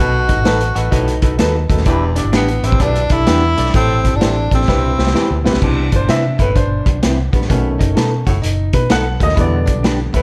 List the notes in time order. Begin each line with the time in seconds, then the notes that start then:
Already playing: D#4 F#4
0.00 B1 B2 B3 A4 B4
0.27 D#4 F#4 A4 B4, kick, closed hi-hat
0.37 G#1
0.44 A1 D#4 F#4 A4 B4, snare, closed hi-hat
0.61 closed hi-hat
0.75 A1 D#4 F#4 A4 B4, closed hi-hat
0.91 B1 A2 D#4 F#4 A4 B4, kick, closed hi-hat
1.08 closed hi-hat
1.22 B1 D#4 F#4 A4 B4, kick, closed hi-hat
1.37 D#2 B3 D#4 F#4 A4 B4, snare, closed hi-hat
1.69 D#2 F#2 A3 D#4 F#4 A4 B4, kick, closed hi-hat
1.77 snare
1.86 E1 E2 E3 D4 E4 G4 B4, kick, closed hi-hat
2.16 D4 E4 G4 D5, closed hi-hat
2.25 G1
2.32 A1 B3 D4 E4 G4 B4, snare, closed hi-hat
2.48 closed hi-hat
2.63 A1 C4 D4 E4 G4 B4, closed hi-hat
2.72 kick
2.79 B1 D2 D4 E4 G4 B4, kick, closed hi-hat
2.95 closed hi-hat
3.10 B1 D4 E4 G4 A4, kick, closed hi-hat
3.26 E2 B3 D4 E4 G4 B4, snare, closed hi-hat
3.56 B1 G2 A3 D4 E4 G4 D5, closed hi-hat
3.65 snare
3.74 A1 A2 A3 C4 E4 G4 A4, kick, closed hi-hat
4.04 C4 E4 G4 A4, kick, closed hi-hat
4.14 G1 D4
4.20 A1 C4 E4 G4 C5, snare, closed hi-hat
4.25 A4
4.51 A1 C4 D4 E4 G4 A4, kick, closed hi-hat
4.55 C4
4.68 C2 G2 C3 C4 E4 G4 B4, kick, snare
4.97 C2 C4 E4 G4 C5, snare
5.07 snare
5.14 E2 C4 E4 G4 B4, snare
5.30 D2
5.44 A#1 G2 B3 C4 E4 G4 B4, snare
5.54 B1, snare
5.62 C2 B2 C3 E3 C4 D4, kick, crash
5.92 G1 D4 C5, kick, closed hi-hat
6.08 C3 C4 E4 B4 E5, snare, closed hi-hat
6.39 G1 A2 E4 B4, kick, closed hi-hat
6.56 D4 C5, kick, closed hi-hat
6.86 B1, kick, closed hi-hat
7.02 C2 C4 E4 B4, snare, closed hi-hat
7.33 A#1 G2 B3, kick, closed hi-hat
7.41 snare
7.49 B1 B2 D#3 A3 B3 C#4, kick, closed hi-hat
7.79 F#1 D#4, kick, closed hi-hat
7.95 B2 D#4 A4 B4, snare, closed hi-hat
8.26 F#1 A2 F#4, kick, closed hi-hat
8.42 F#1 D#4, closed hi-hat
8.73 B2 B4, kick, closed hi-hat
8.89 B1 B3 D#4 A4 B4 F#5, snare, closed hi-hat
9.20 D#2 F#2 A3 D#5, kick, closed hi-hat
9.29 snare
9.36 E2 D3 G3 B3 E4, kick, closed hi-hat
9.40 D5
9.66 B1 D4, kick, closed hi-hat
9.83 D4 G4 B4, snare, closed hi-hat
10.14 D2 A2 E4 B4, kick, closed hi-hat